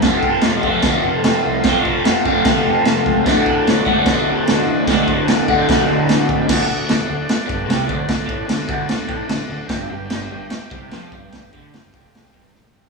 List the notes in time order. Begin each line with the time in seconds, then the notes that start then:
0.01 F1 F2 C3 F3 A4 C5, kick, snare, crash
0.05 A3 C4 F4 F5
0.23 kick
0.41 F1, snare, crash
0.63 F1 A3 C4 F4, kick
0.67 F2 C3 F3
0.82 D2, kick, snare, crash
1.03 F1
1.24 F1, snare, crash
1.46 C2
1.64 F1 F2 C3 F3, kick, snare, crash
1.68 A3 C4 F4
1.85 kick
2.05 F1, snare, crash
2.25 F1 C3 F3 A3 C4 F4, kick
2.29 F2
2.45 D2, kick, snare, crash
2.66 F1
2.85 F1, snare, crash
3.06 C#2, kick
3.24 D1 D2 A2 D3 A3 A4 D5 F#5, kick, snare, crash
3.29 F#4
3.46 kick
3.67 D1, snare, crash
3.85 D1 D3 A3 F#4, kick
3.90 D2 A2
4.06 B1, kick, snare, crash
4.29 D1
4.47 D1, snare, crash
4.67 A1
4.86 D1 D2 A2 D3 A3 A4, kick, snare, crash
4.90 F#4 D5 F#5
5.08 kick
5.27 D1, snare, crash
5.48 D1 A2 D3 A3 F#4, kick
5.53 D2
5.68 B1, kick, snare, crash
5.87 D1 E5
6.09 D1 F#5, snare, crash
6.29 A1 B5, kick
6.47 D1 D2 A4 D5 F#5, kick, snare, crash
6.68 D1 D2
6.88 D1 D2, snare, crash
7.08 D1 D2
7.29 snare, crash
7.47 G1 G2, kick
7.67 C2 C3, snare, crash
7.87 D1 D2, kick
8.08 D1 D2, kick, snare, crash
8.26 A1 A2, kick
8.48 D1 D2, snare, crash
8.68 D1 D2, kick
8.88 D1 D2, snare, crash
9.08 A1 A2, kick
9.29 D1 D2, snare, crash
9.49 D1 D2
9.67 G1 G2 G4 D5 G5, kick, snare, crash
9.90 G1 G2
10.10 G1 G2, snare, crash
10.31 G1 G2
10.50 snare, crash
10.71 C2 C3, kick
10.91 F2 F3, snare, crash
11.12 G1 G2, kick
11.33 G1 G2, kick, snare, crash
11.53 D2 D3, kick
11.74 G1 G2, snare, crash
11.93 F1 F2, kick
12.15 snare, crash
12.34 G1 G2, kick
12.54 A#1 A#2, snare
12.65 high tom
12.74 G1 G2, mid tom
12.84 floor tom